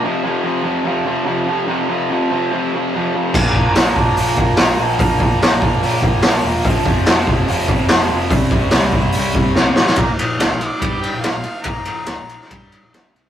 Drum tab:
CC |----------------|----------------|x---------------|----------------|
RD |----------------|----------------|----------------|----------------|
HH |----------------|----------------|----o---o---o---|o---o---o---o---|
SD |----------------|----------------|----o-------o---|----o-------o---|
BD |----------------|----------------|o-o---o---o-----|o-o---o---o-----|

CC |----------------|----------------|----------------|----------------|
RD |----------------|----------------|x-x-x-x-x-x-x-x-|x-x-x-x-x-x-x-x-|
HH |o---o---o---o---|o---o---o-------|----------------|----------------|
SD |----o-------o---|----o-------o-oo|----o-------o---|----o--o----o---|
BD |o-o---o---o-----|o-o---o---o-----|o-------o-------|o-------o-------|